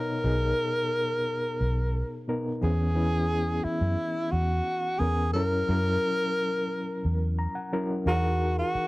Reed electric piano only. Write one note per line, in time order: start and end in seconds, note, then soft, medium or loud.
0.00 0.24 B2 medium
0.00 0.24 B3 medium
0.00 0.24 D#4 medium
0.00 0.12 A#4 medium
0.00 2.63 C#5 medium
0.24 1.11 B2 medium
0.24 1.11 B3 medium
0.24 1.11 D#4 medium
0.24 1.12 G#4 medium
2.28 2.50 B2 medium
2.28 2.50 B3 medium
2.28 2.50 D#4 medium
2.28 2.50 A#4 medium
2.61 2.83 E3 medium
2.61 2.84 B3 medium
2.61 2.84 C#4 medium
2.61 2.84 G#4 medium
2.95 3.82 E3 medium
2.95 3.83 B3 medium
2.95 3.83 C#4 medium
2.95 3.83 E4 medium
4.99 5.21 E3 medium
4.99 5.21 B3 medium
4.99 5.22 C#4 soft
4.99 5.22 A#4 medium
5.34 5.56 F#3 medium
5.34 5.56 C#4 medium
5.34 5.56 E4 medium
5.34 5.57 A#4 medium
5.68 6.55 F#3 medium
5.68 6.55 C#4 medium
5.68 6.55 E4 medium
5.68 6.56 A#4 medium
7.39 7.54 A#5 medium
7.55 8.02 F#5 medium
7.72 7.94 F#3 medium
7.72 7.94 C#4 medium
7.72 7.94 E4 medium
7.72 7.94 A#4 medium
8.06 8.88 E3 medium
8.06 8.88 D#4 medium
8.06 8.88 F#4 medium
8.06 8.88 G#4 medium
8.06 8.88 A#4 medium